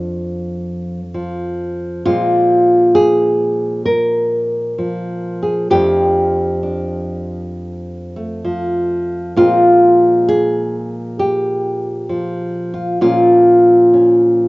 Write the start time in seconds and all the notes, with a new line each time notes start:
Already playing: F2 F3 D4 F4
1.14 F3
2.05 A#2 F3 G#3 C4 F4
2.95 G#4
3.85 A#4
4.78 F3
5.43 G#4
5.70 F2 F3 A3 D4 G4
6.63 D4
8.16 A3
8.45 F3
9.36 A#2 F3 G#3 C4 F4
10.29 G#4
11.19 G4
12.09 F3
12.74 F4
13.01 A#2 F3 G#3 C#4 F4
13.94 C#4